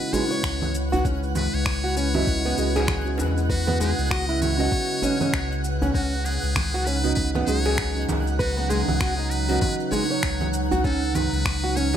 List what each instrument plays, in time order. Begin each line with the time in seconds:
Already playing: ambient pad C#3 G#3 E4 B4, synth keys C#4 F#4 B4 D#5, nylon-string guitar F#4, muted trumpet B4, synth texture F#5
0.01 shaker
0.13 nylon-string guitar G#3, synth keys C#4 F#4 B4 D#5, muted trumpet C#5, djembe bass, shaker
0.31 nylon-string guitar C#5, shaker
0.44 sub bass C#2, finger snap, kick, shaker
0.62 low conga, shaker
0.75 shaker
0.92 nylon-string guitar F#4, djembe bass, shaker
1.05 nylon-string guitar C#4, kick, shaker
1.23 shaker
1.35 muted trumpet B4, djembe slap, low conga, shaker
1.54 sub bass C#2, muted trumpet C#5, shaker
1.66 finger snap, kick, shaker
1.84 nylon-string guitar F#4, shaker
1.97 nylon-string guitar C#4, muted trumpet C#5, shaker
2.14 synth keys C#4 F#4 B4 D#5, nylon-string guitar E4, djembe slap, low conga, shaker
2.27 sub bass C#2, kick, shaker
2.45 nylon-string guitar B3, djembe slap, shaker
2.58 sub bass C#2, nylon-string guitar G#3, synth keys C#4 F#4 B4 D#5, shaker
2.76 nylon-string guitar G#4, djembe slap, shaker
2.88 finger snap, kick, low conga, shaker
3.04 synth keys C#4 F#4 B4 D#5, shaker
3.18 sub bass E2, djembe slap, djembe tone, shaker
3.37 shaker
3.50 muted trumpet F#4, nylon-string guitar B4, kick, shaker
3.67 nylon-string guitar B3, djembe tone, low conga, shaker
3.80 nylon-string guitar G#3, muted trumpet G#4, djembe slap, djembe tone, shaker
3.98 sub bass C#2, shaker
4.11 nylon-string guitar F#4, muted trumpet D#5, finger snap, kick, shaker
4.29 nylon-string guitar E4, shaker
4.42 muted trumpet C#5, low conga, shaker
4.58 synth keys C#4 F#4 B4 D#5, nylon-string guitar F#4, djembe slap, shaker
4.72 kick, shaker
4.91 shaker
5.02 synth keys C#4 F#4 B4 D#5, nylon-string guitar C#4, djembe bass, shaker
5.21 nylon-string guitar C#4, low conga, shaker
5.33 sub bass C#2, finger snap, kick, shaker
5.52 shaker
5.64 shaker
5.82 nylon-string guitar C#4, djembe bass, shaker
5.94 sub bass C#2, nylon-string guitar C#4, muted trumpet F#4, kick, shaker
6.13 shaker
6.24 muted trumpet G#4, djembe slap, shaker
6.38 ambient pad D#4
6.43 sub bass C#2, ambient pad F#3, shaker
6.56 finger snap, kick, low conga, shaker
6.74 nylon-string guitar F#4, shaker
6.85 nylon-string guitar C#4, muted trumpet B4, shaker
7.04 synth keys C#4 F#4 B4 D#5, nylon-string guitar D#4, djembe slap, shaker
7.15 sub bass C#2, muted trumpet B4, kick, shaker
7.35 nylon-string guitar B3, djembe slap, low conga, shaker
7.47 sub bass C#2, nylon-string guitar G#3, synth keys C#4 F#4 B4 D#5, muted trumpet C#5, shaker
7.66 nylon-string guitar G#4, djembe slap, shaker
7.78 finger snap, kick, shaker
7.95 synth keys C#4 F#4 B4 D#5, shaker
8.09 sub bass C#2, djembe slap, djembe tone, low conga, shaker
8.27 shaker
8.39 muted trumpet F#4, nylon-string guitar B4, kick, shaker
8.57 nylon-string guitar B3, djembe tone, shaker
8.70 nylon-string guitar G#3, muted trumpet G#4, djembe slap, djembe tone, shaker
8.88 sub bass C#2, low conga, shaker
9.00 nylon-string guitar F#4, finger snap, kick, shaker
9.18 nylon-string guitar D#4, shaker
9.30 muted trumpet B4, shaker
9.49 synth keys C#4 F#4 B4 D#5, nylon-string guitar F#4, djembe slap, shaker
9.61 muted trumpet B4, kick, low conga, shaker
9.80 shaker
9.92 nylon-string guitar G#3, muted trumpet C#5, djembe bass, shaker
10.10 nylon-string guitar C#5, shaker
10.23 sub bass C#2, finger snap, kick, shaker
10.41 low conga, shaker
10.54 shaker
10.71 nylon-string guitar F#4, djembe bass, shaker
10.84 nylon-string guitar C#4, muted trumpet A4, kick, shaker
11.03 shaker
11.14 muted trumpet B4, djembe slap, low conga, shaker
11.33 sub bass C#2, shaker
11.46 finger snap, kick, shaker
11.64 nylon-string guitar F#4, shaker
11.76 nylon-string guitar C#4, muted trumpet C#5, shaker
11.93 djembe slap